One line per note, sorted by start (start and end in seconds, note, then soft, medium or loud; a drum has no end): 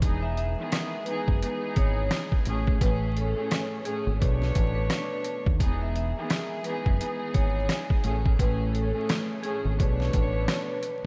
0.01 0.54 E1 loud
0.01 0.52 E3 medium
0.01 2.44 G#3 medium
0.01 0.52 B3 medium
0.01 2.44 B3 medium
0.01 0.52 D#4 loud
0.01 0.53 G#4 loud
0.01 2.44 G#4 medium
0.01 kick loud
0.01 closed hi-hat loud
0.22 0.35 E5 medium
0.37 1.03 E5 medium
0.37 closed hi-hat medium
0.58 1.04 D#3 medium
0.58 1.03 E3 loud
0.58 1.04 B3 medium
0.58 1.04 G#4 loud
0.72 cross-stick loud
0.72 snare loud
0.72 closed hi-hat medium
1.05 1.39 E3 loud
1.05 1.39 B3 medium
1.05 1.40 D#4 medium
1.05 1.40 G#4 loud
1.05 1.72 B4 medium
1.05 closed hi-hat medium
1.28 1.41 F#1 medium
1.28 kick medium
1.42 2.47 E3 loud
1.42 2.47 B3 medium
1.42 2.47 D#4 loud
1.42 2.46 G#4 loud
1.42 closed hi-hat medium
1.76 2.09 G#1 medium
1.76 2.08 C#5 medium
1.76 kick medium
1.76 closed hi-hat medium
2.11 cross-stick medium
2.11 snare loud
2.11 closed hi-hat medium
2.32 kick loud
2.45 2.78 A1 loud
2.45 2.69 A2 loud
2.45 4.19 E3 medium
2.45 5.57 A3 medium
2.45 2.70 A3 medium
2.45 4.19 C#4 medium
2.45 2.70 C#4 medium
2.45 2.70 G#4 loud
2.45 closed hi-hat medium
2.67 kick loud
2.81 3.33 A1 loud
2.81 3.33 A2 loud
2.81 3.33 A3 medium
2.81 3.33 C#4 medium
2.81 3.33 G#4 loud
2.81 3.13 B4 loud
2.81 kick loud
2.81 closed hi-hat loud
3.17 3.48 A4 medium
3.17 closed hi-hat medium
3.35 3.82 A2 loud
3.35 3.82 A3 medium
3.35 3.82 C#4 medium
3.35 3.82 G#4 loud
3.51 cross-stick medium
3.51 snare loud
3.51 closed hi-hat medium
3.84 4.18 A2 loud
3.84 4.18 A3 loud
3.84 4.18 C#4 medium
3.84 4.04 G#4 medium
3.84 4.18 G#4 loud
3.84 closed hi-hat medium
4.07 4.19 G#1 medium
4.20 4.53 B1 loud
4.20 5.51 B2 loud
4.20 5.51 A3 medium
4.20 5.58 B3 medium
4.20 5.51 D4 loud
4.20 5.59 D4 medium
4.20 4.73 B4 medium
4.20 5.51 C#5 loud
4.20 kick loud
4.20 closed hi-hat medium
4.42 snare soft
4.55 4.88 A1 medium
4.55 kick medium
4.55 closed hi-hat medium
4.75 5.56 B4 medium
4.90 cross-stick medium
4.90 snare loud
4.90 closed hi-hat medium
5.25 closed hi-hat medium
5.46 5.62 D#2 medium
5.46 kick loud
5.59 6.12 E1 loud
5.59 6.10 E3 medium
5.59 8.01 G#3 medium
5.59 8.01 B3 medium
5.59 6.11 B3 medium
5.59 6.11 D#4 loud
5.59 8.01 G#4 medium
5.59 6.11 G#4 loud
5.59 kick loud
5.59 closed hi-hat loud
5.82 5.94 E5 medium
5.96 6.61 E5 medium
5.96 closed hi-hat medium
6.16 6.62 D#3 medium
6.16 6.62 E3 loud
6.16 6.62 B3 medium
6.16 6.62 G#4 loud
6.30 cross-stick loud
6.30 snare loud
6.30 closed hi-hat medium
6.64 6.97 E3 loud
6.64 6.97 B3 medium
6.64 6.98 D#4 medium
6.64 6.98 G#4 loud
6.64 7.31 B4 medium
6.64 closed hi-hat medium
6.86 6.99 F#1 medium
6.86 kick medium
7.00 8.05 E3 loud
7.00 8.05 B3 medium
7.00 8.05 D#4 medium
7.00 8.04 G#4 loud
7.00 closed hi-hat medium
7.34 7.67 G#1 medium
7.34 7.66 C#5 medium
7.34 kick medium
7.34 closed hi-hat medium
7.69 cross-stick medium
7.69 snare loud
7.69 closed hi-hat medium
7.90 kick loud
8.04 8.36 A1 loud
8.04 8.27 A2 loud
8.04 9.78 E3 medium
8.04 8.27 A3 medium
8.04 11.06 A3 medium
8.04 8.28 C#4 medium
8.04 9.78 C#4 medium
8.04 8.28 G#4 loud
8.04 closed hi-hat medium
8.26 kick loud
8.39 8.91 A1 loud
8.39 8.90 A2 loud
8.39 8.91 A3 medium
8.39 8.91 C#4 medium
8.39 8.91 G#4 loud
8.39 8.71 B4 loud
8.39 kick loud
8.39 closed hi-hat medium
8.73 9.05 A4 medium
8.73 closed hi-hat medium
8.93 9.40 A2 medium
8.93 9.40 A3 loud
8.93 9.40 C#4 medium
8.93 9.40 G#4 loud
9.09 cross-stick loud
9.09 snare loud
9.09 closed hi-hat medium
9.42 9.76 A2 loud
9.42 9.76 A3 loud
9.42 9.76 C#4 medium
9.42 9.62 G#4 medium
9.42 9.76 G#4 loud
9.42 closed hi-hat medium
9.65 9.78 G#1 medium
9.77 10.11 B1 loud
9.77 11.06 B2 loud
9.77 11.06 A3 medium
9.77 11.06 B3 medium
9.77 11.06 D4 medium
9.77 10.31 B4 medium
9.77 11.06 C#5 loud
9.77 kick loud
9.77 closed hi-hat medium
10.00 snare soft
10.13 10.46 A1 medium
10.13 kick medium
10.13 closed hi-hat medium
10.33 11.06 B4 medium
10.48 cross-stick medium
10.48 snare loud
10.48 closed hi-hat medium
10.83 closed hi-hat medium